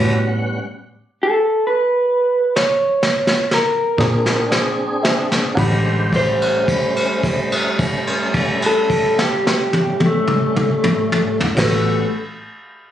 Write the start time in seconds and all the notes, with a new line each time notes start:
Already playing: A2 G3 B3 C#4 F#4 G4 B4 C#5 F#5
1.23 A4
1.67 B4
2.56 C#5, snare
3.03 snare
3.27 snare
3.51 A#4, snare
3.98 A#2 C4 D4 G#4 C5 D5, kick, snare
4.26 snare
4.49 G#4 C5 D5, snare
5.02 G#4 C5 E5, snare
5.32 snare
5.54 A1 D3 G#3 C#4 G4 F#5, kick, crash
5.59 C5 B5
6.13 G3 A3 C#4 C5, kick, crash
6.42 crash
6.68 kick, crash
6.96 crash
7.23 kick, crash
7.52 crash
7.79 kick, crash
8.07 crash
8.34 kick, crash
8.62 crash
8.66 A4
8.90 kick, crash
9.19 G4, snare
9.47 snare
9.73 high tom
10.00 high tom
10.06 A3
10.27 mid tom
10.56 mid tom
10.84 mid tom
11.12 mid tom
11.40 floor tom
11.55 A1 G3 B3 C#4 F#4 G4 B4 F#5, kick, snare, crash
11.60 A3